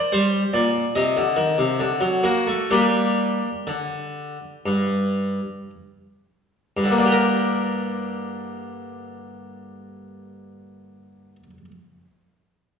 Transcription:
0.00 0.12 D5 medium
0.12 0.42 G3 medium
0.12 0.53 C5 medium
0.53 0.83 A#2 medium
0.53 0.94 D5 medium
0.95 1.15 C3 medium
0.95 2.24 D#5 medium
1.17 1.36 D3 medium
1.36 1.56 D#3 medium
1.58 1.78 C3 medium
1.80 2.00 D3 medium
2.00 2.22 F#3 medium
2.23 2.45 A#3 medium
2.23 2.70 F#4 medium
2.47 2.69 A3 soft
2.71 3.38 G3 soft
2.71 3.48 A#3 soft
2.71 3.48 D4 soft
2.71 5.70 G4 medium
3.67 4.36 D3 soft
4.66 5.38 G2 soft
6.77 11.36 G2 medium
6.84 11.43 D3 soft
6.91 11.50 A#3 soft
6.98 11.57 D4 soft
7.06 11.65 G4 soft
7.12 11.71 A#4 soft

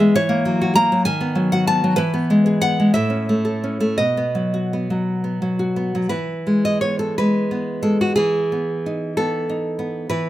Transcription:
0.00 0.14 E3 medium
0.00 0.16 G#3 medium
0.00 0.15 B3 medium
0.00 0.16 G#4 medium
0.00 0.15 E5 loud
0.15 0.92 E3 medium
0.15 0.74 C#5 loud
0.29 0.75 A#3 medium
0.45 0.91 F#3 medium
0.61 0.75 F#4 medium
0.75 1.06 A#3 medium
0.75 1.05 A#5 loud
0.92 1.07 F#3 medium
1.05 1.96 D#3 medium
1.05 1.49 G#5 loud
1.21 1.67 B3 medium
1.35 1.83 F#3 medium
1.52 1.99 F#4 medium
1.52 1.67 F#5 medium
1.67 1.99 B3 medium
1.67 1.97 A5 loud
1.84 1.97 F#3 medium
1.96 2.93 E3 medium
1.96 2.45 B4 loud
2.14 2.60 B3 medium
2.30 2.78 G#3 medium
2.46 2.95 G#4 medium
2.61 2.95 B3 medium
2.61 2.93 F#5 loud
2.80 2.95 G#3 soft
2.94 3.96 A2 medium
2.94 3.95 E5 medium
3.10 3.62 C#4 soft
3.29 3.79 A3 soft
3.45 3.99 A4 soft
3.64 3.99 C#4 soft
3.80 3.99 A3 medium
3.98 6.07 B2 medium
3.98 5.01 D#5 medium
4.17 4.72 B3 medium
4.35 4.89 F#3 soft
4.54 5.58 F#4 soft
4.73 5.23 B3 soft
4.90 5.41 F#3 soft
5.24 5.75 B3 soft
5.42 5.94 F#3 soft
5.59 6.12 F#4 soft
5.76 6.12 B3 soft
5.95 6.10 F#3 soft
6.09 8.13 E3 soft
6.09 6.61 B4 medium
6.47 7.18 G#3 soft
6.65 6.81 D#5 medium
6.81 7.50 B3 soft
6.81 6.99 C#5 medium
6.99 7.17 A4 medium
7.18 7.81 G#3 soft
7.18 7.81 B4 medium
7.51 8.18 B3 soft
7.82 8.17 G#3 soft
7.82 8.00 A4 medium
8.01 8.15 F#4 medium
8.16 10.06 E3 medium
8.16 9.13 G#4 medium
8.52 9.16 B3 soft
8.86 9.48 D#4 soft
9.17 9.78 B3 soft
9.17 10.06 A4 medium
9.49 10.10 D#4 soft
9.79 10.10 B3 soft
10.10 10.29 E3 medium
10.10 10.29 B4 medium

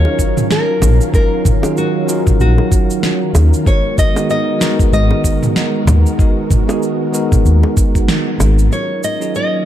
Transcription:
0.00 8.67 D#3 medium
0.00 1.12 F#3 medium
0.00 3.62 F#3 medium
0.00 1.13 C#4 medium
0.00 3.62 C#4 medium
0.00 1.14 D#4 medium
0.00 1.14 F4 medium
0.00 1.64 G#4 loud
0.00 1.15 A#4 loud
0.00 3.62 A#4 medium
0.00 0.47 C#5 loud
0.00 3.62 F5 medium
0.05 high bongo medium
0.19 kick medium
0.19 cabasa medium
0.37 mid tom medium
0.37 cabasa soft
0.51 1.10 A#4 medium
0.51 snare medium
0.51 cabasa soft
0.82 0.96 A#1 medium
0.82 mid tom medium
0.82 high bongo medium
0.82 cabasa medium
1.01 cabasa soft
1.12 1.58 F#3 medium
1.12 1.59 C#4 medium
1.12 1.59 D#4 medium
1.12 1.59 F4 medium
1.12 1.73 A#4 medium
1.12 1.60 A#4 medium
1.12 kick loud
1.12 cabasa soft
1.45 kick loud
1.45 mid tom medium
1.45 cabasa medium
1.62 2.04 F#3 medium
1.62 2.05 C#4 medium
1.62 2.05 D#4 medium
1.62 2.05 F4 medium
1.62 2.06 G#4 loud
1.62 high bongo medium
1.62 cabasa soft
1.77 2.36 F#4 medium
1.77 cabasa soft
2.07 2.21 F#3 medium
2.07 2.22 C#4 medium
2.07 2.22 D#4 medium
2.07 2.22 F4 medium
2.07 2.23 A#4 loud
2.07 cabasa medium
2.27 kick medium
2.27 mid tom medium
2.27 cabasa soft
2.40 2.54 A#1 medium
2.40 3.31 F#4 medium
2.40 cabasa soft
2.58 high bongo medium
2.72 kick medium
2.72 cabasa medium
2.90 cabasa soft
3.03 snare medium
3.03 cabasa soft
3.35 3.49 D#2 medium
3.35 high bongo medium
3.35 cabasa medium
3.54 cabasa soft
3.65 4.11 G#3 medium
3.65 8.68 G#3 medium
3.65 4.11 B3 medium
3.65 8.67 B3 medium
3.65 4.12 D#4 medium
3.65 8.67 F#4 loud
3.65 4.12 F#4 medium
3.65 8.68 A#4 medium
3.65 4.12 A#4 medium
3.65 3.98 C#5 loud
3.65 kick loud
3.65 cabasa soft
3.98 4.29 D#5 medium
3.98 kick loud
3.98 cabasa medium
4.15 4.57 G#3 medium
4.15 4.57 B3 medium
4.15 4.58 D#4 medium
4.15 4.58 F#4 medium
4.15 4.58 G#4 loud
4.15 high bongo medium
4.15 cabasa soft
4.30 4.89 D#5 medium
4.30 cabasa soft
4.59 4.74 G#3 medium
4.59 4.74 B3 medium
4.59 4.74 D#4 medium
4.59 4.75 F#4 medium
4.59 4.75 A#4 loud
4.59 snare medium
4.59 cabasa medium
4.79 kick medium
4.79 cabasa soft
4.93 5.07 G#1 medium
4.93 8.05 D#5 loud
4.93 cabasa soft
5.11 high bongo medium
5.24 kick medium
5.24 cabasa medium
5.43 mid tom medium
5.43 cabasa soft
5.56 snare medium
5.56 cabasa soft
5.87 6.01 D#2 medium
5.87 mid tom medium
5.87 high bongo medium
5.87 cabasa medium
6.06 cabasa soft
6.18 6.64 G#3 medium
6.18 6.64 B3 medium
6.18 6.64 D#4 medium
6.18 6.65 F#4 medium
6.18 6.65 A#4 medium
6.18 kick loud
6.18 cabasa soft
6.51 kick medium
6.51 mid tom medium
6.51 cabasa medium
6.67 7.10 G#3 medium
6.67 7.10 B3 medium
6.67 7.10 D#4 medium
6.67 7.11 F#4 medium
6.67 7.11 G#4 loud
6.67 high bongo medium
6.67 cabasa soft
6.83 cabasa soft
7.12 7.26 G#3 medium
7.12 7.27 B3 medium
7.12 7.27 D#4 medium
7.12 7.27 F#4 medium
7.12 7.28 A#4 loud
7.12 cabasa medium
7.32 kick loud
7.32 mid tom medium
7.32 cabasa soft
7.45 7.59 D#2 medium
7.45 cabasa soft
7.63 high bongo medium
7.77 kick loud
7.77 cabasa medium
7.95 kick medium
7.95 cabasa soft
8.08 snare medium
8.08 cabasa soft
8.40 8.65 G#1 loud
8.40 high bongo medium
8.40 cabasa medium
8.59 cabasa soft
8.70 9.65 D#3 medium
8.70 9.16 F#3 medium
8.70 9.65 F#3 medium
8.70 9.65 A#3 medium
8.70 9.17 C#4 medium
8.70 9.65 C#4 medium
8.70 9.17 D#4 medium
8.70 9.17 F4 medium
8.70 9.18 A#4 medium
8.70 9.04 C#5 medium
8.70 9.65 F5 medium
8.70 cabasa soft
9.04 9.33 D#5 medium
9.04 cabasa medium
9.20 9.62 F#3 medium
9.20 9.62 C#4 medium
9.20 9.63 D#4 medium
9.20 9.63 F4 medium
9.20 9.63 G#4 medium
9.20 cabasa soft
9.35 9.65 D#5 medium
9.35 cabasa soft

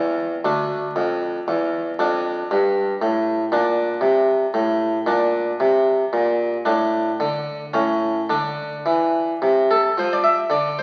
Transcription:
0.00 0.34 E2 medium
0.00 0.40 C4 soft
0.45 0.86 D2 medium
0.45 1.96 D4 soft
0.96 1.37 F2 medium
1.48 1.89 E2 medium
1.99 2.41 F2 medium
1.99 3.49 D4 medium
2.51 2.92 G2 medium
3.02 3.43 A2 medium
3.52 3.94 A#2 medium
3.52 5.04 D4 medium
4.01 4.44 C3 medium
4.54 4.96 A2 medium
5.06 5.49 A#2 medium
5.06 6.62 D4 medium
5.60 6.02 C3 medium
6.13 6.55 A#2 medium
6.65 7.09 A2 medium
6.65 7.70 D4 soft
7.20 7.64 D3 medium
7.73 8.19 A2 medium
7.73 8.26 C#4 soft
8.29 8.75 D3 medium
8.29 9.94 D4 soft
8.86 9.31 E3 medium
9.42 9.87 C3 medium
9.71 9.94 A4 medium
9.98 10.37 F3 medium
9.98 10.12 C5 loud
10.13 10.26 D5 loud
10.24 10.48 E5 loud
10.50 10.83 D3 medium
10.50 10.74 D5 medium
10.79 10.83 C5 medium

